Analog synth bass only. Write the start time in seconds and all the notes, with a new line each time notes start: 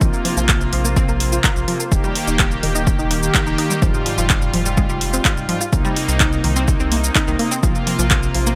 0.01 A#1
0.37 A#1
0.73 A#1
1.09 A#1
1.56 A#1
1.92 D#1
2.28 D#1
2.63 D#1
2.99 D#1
3.47 D#1
3.82 F1
4.18 F1
4.54 F1
4.89 F1
5.37 F1
5.73 C2
6.09 C2
6.44 C2
6.80 C2
7.28 C2
7.63 A#1
7.99 A#1
8.35 A#1